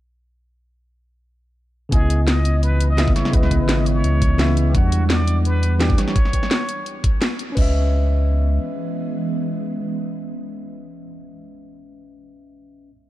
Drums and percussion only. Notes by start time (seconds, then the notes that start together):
1.92 kick, closed hi-hat
2.10 closed hi-hat
2.28 snare, closed hi-hat
2.45 closed hi-hat
2.63 closed hi-hat
2.80 closed hi-hat
2.98 snare, closed hi-hat
3.08 kick
3.16 snare, closed hi-hat
3.25 snare
3.33 kick, closed hi-hat
3.43 snare
3.51 kick, closed hi-hat
3.69 snare, closed hi-hat
3.86 closed hi-hat
4.04 closed hi-hat
4.22 kick, closed hi-hat
4.39 snare, closed hi-hat
4.57 closed hi-hat
4.75 kick, closed hi-hat
4.92 closed hi-hat
5.10 snare, closed hi-hat
5.27 closed hi-hat
5.45 closed hi-hat
5.63 closed hi-hat
5.81 snare, closed hi-hat
5.90 kick
5.98 snare, closed hi-hat
6.08 snare
6.16 kick, closed hi-hat
6.25 snare
6.33 kick, closed hi-hat
6.43 snare
6.51 snare, closed hi-hat
6.69 closed hi-hat
6.86 closed hi-hat
7.04 kick, closed hi-hat
7.22 snare, closed hi-hat
7.39 closed hi-hat
7.57 kick, crash